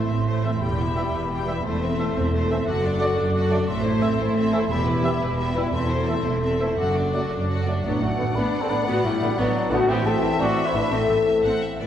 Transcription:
Already playing: E4 C5 C6
0.08 A1 A2 C4 A4 E5
0.28 A3 E4 C5
0.43 E3 A3 C4 A4 E5
0.60 E1 E2 G3 G4 G5 B5
0.78 B3 E4 E5
0.96 E3 G3 B3 G4 B4 E5 G5
1.12 E1 E2 B3 E4 E5
1.30 G3 G4 G5
1.45 E3 G3 B3 E4 B4 E5
1.49 E5
1.63 E1 E2 A3 A4 C5 C6
1.81 C4 C5 E5
1.97 E3 A3 C4 A4 C5 E5
2.15 E1 E2 C4 C5 E5
2.33 A3 A4 C5
2.50 E3 A3 C4 A4 C5 E5
2.66 F#1 F#2 F#4 A4 F#5 D6
2.84 D4 F#4 D5
3.00 F#3 A3 D4 F#4 A4 D5 F#5
3.16 F#1 F#2 D4 F#4 D5
3.35 F#4 A4 F#5
3.50 F#3 A3 D4 F#4 A4 D5
3.68 A1 A2 C4 A4 E5 C6
3.84 E4 C5
4.01 E3 A3 C4 A4 E5
4.18 A1 A2 E4 C5
4.36 C4 A4 E5
4.52 E3 A3 C4 E4 A4 C5 E5
4.69 E1 E2 B3 G4 E5 B5
4.86 E4 B4
5.02 E3 G3 B3 G4 E5
5.07 B3 B4
5.21 E1 E2 E4 B4
5.37 B3 G4 E5
5.55 E3 G3 B3 E4 B4 E5
5.72 E1 E2 C4 A4 E5 C6
5.90 E4 C5
6.07 E3 A3 C4 A4 E5
6.24 E1 E2 E4 C5
6.42 C4 A4 E5
6.60 E3 A3 C4 E4 A4 C5 E5
6.77 F#1 F#2 F#4 A4 F#5 D6
6.95 D4 F#4 D5
7.13 F#3 A3 D4 F#4 A4 D5 F#5
7.30 F#1 F#2 D4 F#4 D5
7.49 F#4 A4 F#5
7.66 F#3 A3 D4 F#4 A4 D5
7.83 A1 A2 F#3 B3 D4 D5 F#5
8.00 A1 A2 F#3 A3 F#4 F#5
8.17 A1 A2 D3 B3
8.35 A1 A2 B3 D4 B4 B5
8.61 C4 A4 A5
8.69 A1 A2 D3 B3 D4 B4 B5
8.86 A1 A2 B3 F#4 F#5
9.04 A1 A2 F#3 G3 E4 E5
9.20 A1 A2 D3 B3
9.37 A1 A2 F#3 B3 D4 D5
9.70 A1 A2 D3 A3 B3 F#4 F#5
9.87 A1 A2 E3 B3 C4 G4 E5 G5
10.05 A1 A2 A3 C4 A4 A5
10.22 A1 A2 E3
10.39 A1 A2 C4 F#4 D5 D6
10.66 E4 C5 C6
10.74 A1 A2 E3 D4 B4 B5
10.91 A1 A2 E3 C4 A4 A5
11.09 A1 A2 A3
11.27 A1 A2 E3
11.44 A1 A2 C4 F#5
11.62 E5
11.79 A1 A2 E3 D5

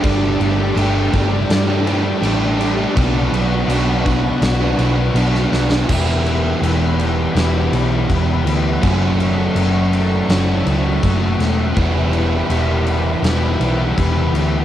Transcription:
Already playing: A4 D5 D6
0.02 G1 G3 A3 D4 G4 G5, kick, crash
0.39 G1 G3 A3 D4 G4, crash
0.57 A3 D4 G4
0.76 G1 G3 A3 D4 G4, crash
0.94 A3 D4 G4
1.12 G1 G3 A3 D4 G4, kick, crash
1.31 A3 D4 G4, muted overdriven electric guitar stroke
1.49 G2 G3 A3 D4 G4, snare, crash
1.68 A3 D4 G4
1.86 G3 A3 D4 G4, crash
2.04 D4 G4, muted overdriven electric guitar stroke
2.08 A3
2.22 A1 G3 A3 D4 G4, crash
2.59 G3 A3 D4 G4, crash
2.78 A3 D4 G4
2.96 B1 B2 F#3 B3 D4 F#4 B4 F#5 C#6, kick, crash
3.31 B1 B2 F#3 B3 D4, crash
3.36 F#4
3.50 B3 D4 F#4
3.68 B1 B2 F#3 B3 D4, crash
3.72 F#4
3.87 B3 D4 F#4
4.04 B2 F#3 B3 D4 F#4, kick, crash
4.24 B3 D4 F#4, muted overdriven electric guitar stroke
4.41 B1 B2 F#3 B3 D4 F#4, snare, crash
4.60 B3 D4 F#4
4.78 B1 B2 F#3 B3 D4, crash
4.82 F#4
4.96 B3 D4 F#4, muted overdriven electric guitar stroke
5.14 B1 B2 F#3 B3 D4, crash
5.19 F#4
5.35 snare
5.51 B1 B2 F#3 B3 D4 F#4, snare
5.69 B3 D4 F#4, snare
5.88 E1 E2 B2 E3 G3 B3 E4 G4 E5 F#5 B5, kick, crash
6.26 crash
6.61 E1 E3 G3 B3 E4, crash
6.99 crash
7.35 E1 E2 B2 E3 G3 B3 E4 G4, snare, crash
7.71 B1 E3 G3 B3 E4, crash
8.08 E1 E3 G3 B3 E4, kick, crash
8.45 D2, crash
8.81 F#1 F#2 C#3 F#3 A3 C#4 F#4 A4 E5 C#6, kick, crash
9.20 crash
9.55 F#1 F#3 A3 C#4 F#4, crash
9.93 crash
10.29 F#1 F#2 C#3 F#3 A3 C#4 F#4, snare, crash
10.66 C#2 F#3 A3 C#4 F#4, crash
11.02 F#1 F#3 A3 C#4 F#4, kick, crash
11.39 E1, snare, crash
11.76 E1 E2 B2 E3 G3 B3 E4 G4 B5, kick, crash
12.13 crash
12.50 E1 E3 G3 B3 E4, crash
12.87 crash
13.22 E1 E2 B2 E3 G3 B3, snare, crash
13.27 E4
13.60 B1 E3 G3 B3 E4, crash
13.96 E1 E3 G3 B3 E4, kick, crash
14.33 D2, crash

